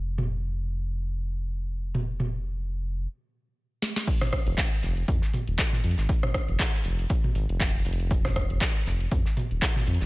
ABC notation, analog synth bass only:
X:1
M:4/4
L:1/16
Q:"Swing 16ths" 1/4=119
K:Fm
V:1 name="Analog synth bass" clef=bass
F,,,16- | F,,,8 z8 | z3 F,,, z2 F,,,2 F,, z2 E,,, z2 F,, A,,, | z3 F,,, z2 F,,,2 z2 A,,, F,,,3 F,,,2- |
F,,,3 F,,, z2 F,,,2 F,, z2 E,,, z2 F,, A,,, |]